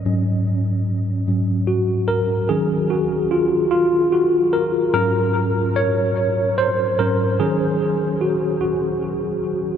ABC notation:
X:1
M:6/8
L:1/8
Q:3/8=49
K:Abmix
V:1 name="Tine electric piano"
z4 G B | A G F F G B | B2 d2 c B | A2 G G2 z |]
V:2 name="Tine electric piano" clef=bass
[A,,G,D]3 [A,,G,D] z2 | [E,G,D] z4 z | [A,,G,D] z4 [A,,G,D] | [E,G,D]3 z3 |]